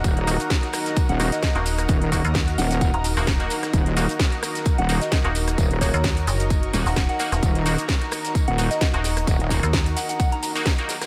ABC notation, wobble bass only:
X:1
M:4/4
L:1/16
Q:"Swing 16ths" 1/4=130
K:Ebm
V:1 name="Wobble bass" clef=bass
E,,,3 z6 E,,,2 z4 z | E,,,3 z3 E,,,3 z6 z | E,,,3 z6 E,,,2 z4 z | E,,,3 z6 z E,,, z4 z |
E,,,3 z6 E,,,2 z4 z | E,,,3 z12 z |]